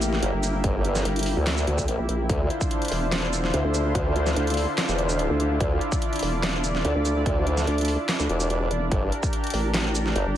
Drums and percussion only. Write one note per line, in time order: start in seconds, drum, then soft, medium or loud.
0.02 closed hi-hat medium
0.02 shaker medium
0.13 snare soft
0.23 closed hi-hat medium
0.43 closed hi-hat medium
0.43 shaker medium
0.64 kick loud
0.64 closed hi-hat medium
0.85 closed hi-hat medium
0.95 snare soft
0.95 closed hi-hat soft
0.95 shaker medium
1.05 closed hi-hat medium
1.16 closed hi-hat medium
1.19 closed hi-hat medium
1.23 closed hi-hat medium
1.23 open hi-hat loud
1.47 snare loud
1.47 clap medium
1.47 closed hi-hat medium
1.57 shaker medium
1.67 closed hi-hat medium
1.78 kick medium
1.78 shaker medium
1.88 closed hi-hat medium
2.09 closed hi-hat medium
2.29 kick loud
2.29 closed hi-hat medium
2.50 closed hi-hat medium
2.61 kick loud
2.61 shaker medium
2.71 closed hi-hat medium
2.82 closed hi-hat medium
2.85 closed hi-hat medium
2.88 closed hi-hat medium
2.88 open hi-hat loud
3.12 snare loud
3.12 clap medium
3.12 closed hi-hat medium
3.33 closed hi-hat medium
3.33 shaker medium
3.44 snare soft
3.54 closed hi-hat medium
3.74 closed hi-hat medium
3.74 shaker medium
3.95 kick loud
3.95 closed hi-hat medium
4.16 closed hi-hat medium
4.27 snare soft
4.27 closed hi-hat soft
4.27 shaker medium
4.36 closed hi-hat medium
4.47 closed hi-hat medium
4.50 closed hi-hat medium
4.54 closed hi-hat medium
4.54 open hi-hat medium
4.78 snare loud
4.78 clap loud
4.78 closed hi-hat medium
4.89 shaker medium
4.98 closed hi-hat medium
5.09 shaker medium
5.19 closed hi-hat medium
5.40 closed hi-hat medium
5.61 kick loud
5.61 closed hi-hat medium
5.81 closed hi-hat soft
5.92 kick loud
5.92 shaker medium
6.02 closed hi-hat medium
6.13 closed hi-hat soft
6.16 closed hi-hat medium
6.19 closed hi-hat medium
6.19 open hi-hat medium
6.43 snare loud
6.43 clap medium
6.43 closed hi-hat medium
6.64 closed hi-hat medium
6.64 shaker medium
6.75 snare soft
6.85 closed hi-hat medium
7.05 closed hi-hat medium
7.05 shaker medium
7.26 kick loud
7.26 closed hi-hat medium
7.47 closed hi-hat medium
7.58 snare soft
7.58 closed hi-hat soft
7.58 shaker medium
7.67 closed hi-hat medium
7.78 closed hi-hat soft
7.81 closed hi-hat medium
7.85 closed hi-hat medium
7.85 open hi-hat loud
8.09 snare loud
8.09 clap medium
8.09 closed hi-hat medium
8.20 shaker medium
8.29 closed hi-hat medium
8.40 shaker medium
8.50 closed hi-hat medium
8.71 closed hi-hat medium
8.92 kick loud
8.92 closed hi-hat medium
9.12 closed hi-hat medium
9.23 kick loud
9.23 shaker medium
9.33 closed hi-hat medium
9.44 closed hi-hat soft
9.47 closed hi-hat medium
9.50 closed hi-hat medium
9.50 open hi-hat medium
9.74 snare loud
9.74 clap medium
9.74 closed hi-hat medium
9.95 closed hi-hat medium
9.95 shaker medium
10.06 snare soft
10.16 closed hi-hat medium